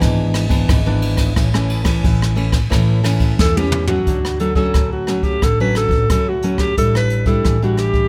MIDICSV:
0, 0, Header, 1, 5, 480
1, 0, Start_track
1, 0, Key_signature, 2, "major"
1, 0, Tempo, 676437
1, 969, Time_signature, 4, 2, 24, 8
1, 5736, End_track
2, 0, Start_track
2, 0, Title_t, "Alto saxophone"
2, 0, Program_c, 0, 65
2, 2415, Note_on_c, 0, 69, 86
2, 2532, Note_on_c, 0, 67, 74
2, 2543, Note_off_c, 0, 69, 0
2, 2744, Note_off_c, 0, 67, 0
2, 2748, Note_on_c, 0, 66, 77
2, 3093, Note_off_c, 0, 66, 0
2, 3124, Note_on_c, 0, 69, 73
2, 3229, Note_off_c, 0, 69, 0
2, 3234, Note_on_c, 0, 69, 74
2, 3464, Note_off_c, 0, 69, 0
2, 3495, Note_on_c, 0, 66, 68
2, 3716, Note_on_c, 0, 67, 78
2, 3726, Note_off_c, 0, 66, 0
2, 3855, Note_on_c, 0, 69, 88
2, 3866, Note_off_c, 0, 67, 0
2, 3973, Note_off_c, 0, 69, 0
2, 3981, Note_on_c, 0, 71, 83
2, 4088, Note_off_c, 0, 71, 0
2, 4094, Note_on_c, 0, 69, 84
2, 4315, Note_off_c, 0, 69, 0
2, 4338, Note_on_c, 0, 69, 78
2, 4463, Note_on_c, 0, 66, 71
2, 4474, Note_off_c, 0, 69, 0
2, 4677, Note_on_c, 0, 67, 73
2, 4688, Note_off_c, 0, 66, 0
2, 4804, Note_off_c, 0, 67, 0
2, 4812, Note_on_c, 0, 69, 91
2, 4923, Note_off_c, 0, 69, 0
2, 4943, Note_on_c, 0, 71, 81
2, 5152, Note_off_c, 0, 71, 0
2, 5157, Note_on_c, 0, 69, 74
2, 5387, Note_off_c, 0, 69, 0
2, 5420, Note_on_c, 0, 66, 81
2, 5527, Note_on_c, 0, 67, 90
2, 5538, Note_off_c, 0, 66, 0
2, 5736, Note_off_c, 0, 67, 0
2, 5736, End_track
3, 0, Start_track
3, 0, Title_t, "Nylon-string guitar"
3, 0, Program_c, 1, 24
3, 0, Note_on_c, 1, 52, 69
3, 0, Note_on_c, 1, 59, 74
3, 0, Note_on_c, 1, 62, 80
3, 3, Note_on_c, 1, 44, 61
3, 323, Note_off_c, 1, 52, 0
3, 324, Note_off_c, 1, 59, 0
3, 325, Note_off_c, 1, 62, 0
3, 348, Note_on_c, 1, 52, 57
3, 351, Note_on_c, 1, 59, 62
3, 355, Note_on_c, 1, 62, 62
3, 462, Note_off_c, 1, 44, 0
3, 485, Note_on_c, 1, 44, 54
3, 560, Note_off_c, 1, 52, 0
3, 562, Note_off_c, 1, 59, 0
3, 564, Note_off_c, 1, 62, 0
3, 610, Note_on_c, 1, 52, 61
3, 612, Note_on_c, 1, 59, 59
3, 616, Note_on_c, 1, 62, 66
3, 932, Note_off_c, 1, 52, 0
3, 932, Note_off_c, 1, 59, 0
3, 934, Note_off_c, 1, 62, 0
3, 943, Note_off_c, 1, 44, 0
3, 965, Note_on_c, 1, 45, 57
3, 968, Note_on_c, 1, 52, 47
3, 968, Note_on_c, 1, 57, 51
3, 971, Note_on_c, 1, 61, 54
3, 1050, Note_off_c, 1, 52, 0
3, 1050, Note_off_c, 1, 57, 0
3, 1052, Note_off_c, 1, 61, 0
3, 1091, Note_on_c, 1, 52, 64
3, 1094, Note_on_c, 1, 57, 69
3, 1098, Note_on_c, 1, 61, 68
3, 1292, Note_off_c, 1, 52, 0
3, 1292, Note_off_c, 1, 57, 0
3, 1295, Note_off_c, 1, 61, 0
3, 1307, Note_on_c, 1, 52, 57
3, 1313, Note_on_c, 1, 57, 62
3, 1316, Note_on_c, 1, 61, 74
3, 1423, Note_off_c, 1, 45, 0
3, 1437, Note_off_c, 1, 52, 0
3, 1445, Note_on_c, 1, 52, 57
3, 1643, Note_off_c, 1, 57, 0
3, 1644, Note_off_c, 1, 61, 0
3, 1664, Note_off_c, 1, 52, 0
3, 1672, Note_on_c, 1, 52, 58
3, 1676, Note_on_c, 1, 57, 54
3, 1678, Note_on_c, 1, 61, 60
3, 1822, Note_off_c, 1, 52, 0
3, 1824, Note_off_c, 1, 57, 0
3, 1824, Note_off_c, 1, 61, 0
3, 1916, Note_on_c, 1, 45, 64
3, 1917, Note_on_c, 1, 52, 56
3, 1921, Note_on_c, 1, 57, 56
3, 1924, Note_on_c, 1, 61, 68
3, 2124, Note_off_c, 1, 52, 0
3, 2125, Note_off_c, 1, 57, 0
3, 2128, Note_off_c, 1, 61, 0
3, 2152, Note_on_c, 1, 52, 51
3, 2155, Note_on_c, 1, 57, 65
3, 2160, Note_on_c, 1, 61, 58
3, 2379, Note_off_c, 1, 45, 0
3, 2397, Note_off_c, 1, 52, 0
3, 2405, Note_on_c, 1, 52, 60
3, 2484, Note_off_c, 1, 57, 0
3, 2485, Note_off_c, 1, 61, 0
3, 2528, Note_off_c, 1, 52, 0
3, 2537, Note_on_c, 1, 52, 60
3, 2541, Note_on_c, 1, 57, 56
3, 2547, Note_on_c, 1, 61, 76
3, 2735, Note_off_c, 1, 52, 0
3, 2737, Note_off_c, 1, 57, 0
3, 2738, Note_off_c, 1, 61, 0
3, 2752, Note_on_c, 1, 54, 64
3, 2756, Note_on_c, 1, 57, 58
3, 2759, Note_on_c, 1, 61, 67
3, 2892, Note_on_c, 1, 50, 52
3, 2963, Note_off_c, 1, 54, 0
3, 2964, Note_off_c, 1, 57, 0
3, 2966, Note_off_c, 1, 61, 0
3, 3124, Note_on_c, 1, 54, 53
3, 3128, Note_on_c, 1, 57, 56
3, 3128, Note_on_c, 1, 61, 61
3, 3199, Note_off_c, 1, 54, 0
3, 3200, Note_off_c, 1, 57, 0
3, 3201, Note_off_c, 1, 61, 0
3, 3235, Note_on_c, 1, 54, 63
3, 3240, Note_on_c, 1, 57, 55
3, 3242, Note_on_c, 1, 61, 70
3, 3347, Note_off_c, 1, 50, 0
3, 3368, Note_on_c, 1, 45, 49
3, 3564, Note_off_c, 1, 54, 0
3, 3567, Note_off_c, 1, 57, 0
3, 3567, Note_off_c, 1, 61, 0
3, 3601, Note_on_c, 1, 54, 50
3, 3603, Note_on_c, 1, 57, 61
3, 3608, Note_on_c, 1, 61, 61
3, 3825, Note_off_c, 1, 45, 0
3, 3831, Note_off_c, 1, 54, 0
3, 3831, Note_off_c, 1, 57, 0
3, 3834, Note_off_c, 1, 61, 0
3, 3849, Note_on_c, 1, 50, 54
3, 3975, Note_on_c, 1, 54, 64
3, 3978, Note_on_c, 1, 57, 59
3, 3979, Note_on_c, 1, 61, 63
3, 4295, Note_off_c, 1, 54, 0
3, 4295, Note_off_c, 1, 57, 0
3, 4297, Note_off_c, 1, 61, 0
3, 4306, Note_off_c, 1, 50, 0
3, 4327, Note_on_c, 1, 45, 57
3, 4330, Note_on_c, 1, 54, 55
3, 4334, Note_on_c, 1, 57, 52
3, 4335, Note_on_c, 1, 61, 60
3, 4471, Note_off_c, 1, 54, 0
3, 4472, Note_off_c, 1, 57, 0
3, 4474, Note_off_c, 1, 61, 0
3, 4566, Note_on_c, 1, 54, 56
3, 4570, Note_on_c, 1, 57, 58
3, 4571, Note_on_c, 1, 61, 74
3, 4771, Note_off_c, 1, 54, 0
3, 4772, Note_off_c, 1, 57, 0
3, 4773, Note_off_c, 1, 61, 0
3, 4786, Note_off_c, 1, 45, 0
3, 4806, Note_on_c, 1, 45, 47
3, 4808, Note_on_c, 1, 55, 51
3, 4812, Note_on_c, 1, 62, 53
3, 4816, Note_on_c, 1, 64, 55
3, 5132, Note_off_c, 1, 55, 0
3, 5133, Note_off_c, 1, 62, 0
3, 5133, Note_off_c, 1, 64, 0
3, 5155, Note_on_c, 1, 55, 60
3, 5159, Note_on_c, 1, 62, 62
3, 5162, Note_on_c, 1, 64, 63
3, 5265, Note_off_c, 1, 45, 0
3, 5287, Note_on_c, 1, 52, 48
3, 5366, Note_off_c, 1, 55, 0
3, 5366, Note_off_c, 1, 62, 0
3, 5369, Note_off_c, 1, 64, 0
3, 5410, Note_on_c, 1, 55, 60
3, 5412, Note_on_c, 1, 62, 52
3, 5419, Note_on_c, 1, 64, 58
3, 5733, Note_off_c, 1, 55, 0
3, 5735, Note_off_c, 1, 62, 0
3, 5736, Note_off_c, 1, 52, 0
3, 5736, Note_off_c, 1, 64, 0
3, 5736, End_track
4, 0, Start_track
4, 0, Title_t, "Upright bass"
4, 0, Program_c, 2, 32
4, 10, Note_on_c, 2, 32, 105
4, 418, Note_off_c, 2, 32, 0
4, 491, Note_on_c, 2, 32, 99
4, 970, Note_off_c, 2, 32, 0
4, 970, Note_on_c, 2, 33, 94
4, 1377, Note_off_c, 2, 33, 0
4, 1451, Note_on_c, 2, 33, 88
4, 1858, Note_off_c, 2, 33, 0
4, 1929, Note_on_c, 2, 33, 97
4, 2337, Note_off_c, 2, 33, 0
4, 2408, Note_on_c, 2, 40, 99
4, 2817, Note_off_c, 2, 40, 0
4, 2887, Note_on_c, 2, 38, 83
4, 3296, Note_off_c, 2, 38, 0
4, 3367, Note_on_c, 2, 38, 94
4, 3776, Note_off_c, 2, 38, 0
4, 3849, Note_on_c, 2, 33, 87
4, 4156, Note_off_c, 2, 33, 0
4, 4177, Note_on_c, 2, 33, 84
4, 4293, Note_off_c, 2, 33, 0
4, 4329, Note_on_c, 2, 38, 86
4, 4738, Note_off_c, 2, 38, 0
4, 4809, Note_on_c, 2, 33, 87
4, 5218, Note_off_c, 2, 33, 0
4, 5289, Note_on_c, 2, 33, 90
4, 5698, Note_off_c, 2, 33, 0
4, 5736, End_track
5, 0, Start_track
5, 0, Title_t, "Drums"
5, 11, Note_on_c, 9, 36, 67
5, 13, Note_on_c, 9, 37, 65
5, 13, Note_on_c, 9, 51, 48
5, 82, Note_off_c, 9, 36, 0
5, 84, Note_off_c, 9, 37, 0
5, 84, Note_off_c, 9, 51, 0
5, 242, Note_on_c, 9, 37, 72
5, 242, Note_on_c, 9, 51, 55
5, 313, Note_off_c, 9, 37, 0
5, 313, Note_off_c, 9, 51, 0
5, 355, Note_on_c, 9, 36, 72
5, 357, Note_on_c, 9, 51, 54
5, 426, Note_off_c, 9, 36, 0
5, 428, Note_off_c, 9, 51, 0
5, 490, Note_on_c, 9, 36, 105
5, 490, Note_on_c, 9, 37, 76
5, 490, Note_on_c, 9, 51, 59
5, 561, Note_off_c, 9, 36, 0
5, 561, Note_off_c, 9, 37, 0
5, 561, Note_off_c, 9, 51, 0
5, 723, Note_on_c, 9, 51, 57
5, 794, Note_off_c, 9, 51, 0
5, 833, Note_on_c, 9, 36, 63
5, 833, Note_on_c, 9, 37, 59
5, 833, Note_on_c, 9, 51, 51
5, 903, Note_off_c, 9, 37, 0
5, 903, Note_off_c, 9, 51, 0
5, 904, Note_off_c, 9, 36, 0
5, 968, Note_on_c, 9, 37, 72
5, 968, Note_on_c, 9, 51, 54
5, 970, Note_on_c, 9, 36, 77
5, 1039, Note_off_c, 9, 37, 0
5, 1039, Note_off_c, 9, 51, 0
5, 1041, Note_off_c, 9, 36, 0
5, 1094, Note_on_c, 9, 37, 71
5, 1165, Note_off_c, 9, 37, 0
5, 1202, Note_on_c, 9, 51, 48
5, 1273, Note_off_c, 9, 51, 0
5, 1312, Note_on_c, 9, 37, 78
5, 1312, Note_on_c, 9, 51, 57
5, 1313, Note_on_c, 9, 36, 76
5, 1383, Note_off_c, 9, 37, 0
5, 1383, Note_off_c, 9, 51, 0
5, 1384, Note_off_c, 9, 36, 0
5, 1449, Note_on_c, 9, 51, 50
5, 1450, Note_on_c, 9, 36, 81
5, 1520, Note_off_c, 9, 51, 0
5, 1521, Note_off_c, 9, 36, 0
5, 1578, Note_on_c, 9, 37, 71
5, 1649, Note_off_c, 9, 37, 0
5, 1681, Note_on_c, 9, 51, 41
5, 1752, Note_off_c, 9, 51, 0
5, 1792, Note_on_c, 9, 37, 64
5, 1792, Note_on_c, 9, 51, 44
5, 1793, Note_on_c, 9, 36, 64
5, 1863, Note_off_c, 9, 37, 0
5, 1863, Note_off_c, 9, 51, 0
5, 1864, Note_off_c, 9, 36, 0
5, 1929, Note_on_c, 9, 36, 60
5, 1930, Note_on_c, 9, 37, 69
5, 1930, Note_on_c, 9, 51, 50
5, 2000, Note_off_c, 9, 36, 0
5, 2001, Note_off_c, 9, 37, 0
5, 2001, Note_off_c, 9, 51, 0
5, 2160, Note_on_c, 9, 37, 65
5, 2160, Note_on_c, 9, 51, 51
5, 2231, Note_off_c, 9, 37, 0
5, 2231, Note_off_c, 9, 51, 0
5, 2271, Note_on_c, 9, 51, 45
5, 2272, Note_on_c, 9, 36, 67
5, 2342, Note_off_c, 9, 51, 0
5, 2343, Note_off_c, 9, 36, 0
5, 2406, Note_on_c, 9, 38, 54
5, 2408, Note_on_c, 9, 36, 103
5, 2477, Note_off_c, 9, 38, 0
5, 2479, Note_off_c, 9, 36, 0
5, 2534, Note_on_c, 9, 48, 55
5, 2605, Note_off_c, 9, 48, 0
5, 2639, Note_on_c, 9, 45, 72
5, 2709, Note_off_c, 9, 45, 0
5, 2750, Note_on_c, 9, 43, 61
5, 2821, Note_off_c, 9, 43, 0
5, 2886, Note_on_c, 9, 42, 62
5, 2888, Note_on_c, 9, 36, 72
5, 2957, Note_off_c, 9, 42, 0
5, 2959, Note_off_c, 9, 36, 0
5, 3014, Note_on_c, 9, 37, 70
5, 3014, Note_on_c, 9, 42, 32
5, 3085, Note_off_c, 9, 37, 0
5, 3085, Note_off_c, 9, 42, 0
5, 3119, Note_on_c, 9, 42, 48
5, 3190, Note_off_c, 9, 42, 0
5, 3230, Note_on_c, 9, 42, 30
5, 3231, Note_on_c, 9, 36, 69
5, 3301, Note_off_c, 9, 42, 0
5, 3302, Note_off_c, 9, 36, 0
5, 3364, Note_on_c, 9, 37, 61
5, 3364, Note_on_c, 9, 42, 60
5, 3368, Note_on_c, 9, 36, 82
5, 3435, Note_off_c, 9, 37, 0
5, 3435, Note_off_c, 9, 42, 0
5, 3439, Note_off_c, 9, 36, 0
5, 3599, Note_on_c, 9, 37, 54
5, 3599, Note_on_c, 9, 42, 40
5, 3670, Note_off_c, 9, 37, 0
5, 3670, Note_off_c, 9, 42, 0
5, 3710, Note_on_c, 9, 42, 29
5, 3711, Note_on_c, 9, 36, 62
5, 3781, Note_off_c, 9, 42, 0
5, 3782, Note_off_c, 9, 36, 0
5, 3847, Note_on_c, 9, 37, 63
5, 3847, Note_on_c, 9, 42, 65
5, 3849, Note_on_c, 9, 36, 67
5, 3918, Note_off_c, 9, 37, 0
5, 3918, Note_off_c, 9, 42, 0
5, 3920, Note_off_c, 9, 36, 0
5, 4081, Note_on_c, 9, 37, 66
5, 4081, Note_on_c, 9, 42, 52
5, 4152, Note_off_c, 9, 37, 0
5, 4152, Note_off_c, 9, 42, 0
5, 4193, Note_on_c, 9, 36, 73
5, 4193, Note_on_c, 9, 42, 34
5, 4264, Note_off_c, 9, 36, 0
5, 4264, Note_off_c, 9, 42, 0
5, 4327, Note_on_c, 9, 37, 75
5, 4327, Note_on_c, 9, 42, 73
5, 4329, Note_on_c, 9, 36, 98
5, 4398, Note_off_c, 9, 37, 0
5, 4398, Note_off_c, 9, 42, 0
5, 4400, Note_off_c, 9, 36, 0
5, 4560, Note_on_c, 9, 42, 52
5, 4630, Note_off_c, 9, 42, 0
5, 4670, Note_on_c, 9, 37, 57
5, 4672, Note_on_c, 9, 36, 57
5, 4741, Note_off_c, 9, 37, 0
5, 4743, Note_off_c, 9, 36, 0
5, 4807, Note_on_c, 9, 42, 70
5, 4809, Note_on_c, 9, 36, 64
5, 4878, Note_off_c, 9, 42, 0
5, 4880, Note_off_c, 9, 36, 0
5, 4933, Note_on_c, 9, 37, 68
5, 5004, Note_off_c, 9, 37, 0
5, 5038, Note_on_c, 9, 42, 45
5, 5109, Note_off_c, 9, 42, 0
5, 5148, Note_on_c, 9, 42, 35
5, 5152, Note_on_c, 9, 36, 73
5, 5219, Note_off_c, 9, 42, 0
5, 5223, Note_off_c, 9, 36, 0
5, 5284, Note_on_c, 9, 37, 54
5, 5284, Note_on_c, 9, 42, 52
5, 5288, Note_on_c, 9, 36, 73
5, 5355, Note_off_c, 9, 37, 0
5, 5355, Note_off_c, 9, 42, 0
5, 5359, Note_off_c, 9, 36, 0
5, 5413, Note_on_c, 9, 42, 30
5, 5484, Note_off_c, 9, 42, 0
5, 5517, Note_on_c, 9, 37, 52
5, 5517, Note_on_c, 9, 42, 43
5, 5588, Note_off_c, 9, 37, 0
5, 5588, Note_off_c, 9, 42, 0
5, 5630, Note_on_c, 9, 42, 27
5, 5633, Note_on_c, 9, 36, 65
5, 5701, Note_off_c, 9, 42, 0
5, 5704, Note_off_c, 9, 36, 0
5, 5736, End_track
0, 0, End_of_file